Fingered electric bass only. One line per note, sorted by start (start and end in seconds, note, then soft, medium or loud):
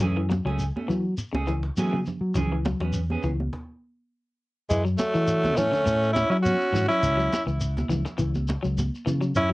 0.01 0.38 F#2 medium
0.45 0.69 C#2 medium
0.90 1.13 F#3 medium
1.33 1.69 C#2 medium
1.78 2.01 F#3 medium
2.21 2.33 F#3 medium
2.35 2.72 C#2 medium
2.80 3.15 E2 medium
3.24 3.48 C#2 medium
4.70 4.94 F#2 loud
5.15 5.57 E3 loud
5.57 5.70 A2 medium
5.86 6.23 A2 loud
6.30 6.54 F#3 loud
6.73 6.86 G#2 medium
7.03 7.27 C#2 loud
7.47 7.82 C#2 medium
7.89 8.02 C#2 medium
8.19 8.56 C#2 loud
8.64 8.88 C#2 medium
9.06 9.31 C#3 medium
9.36 9.53 F#2 loud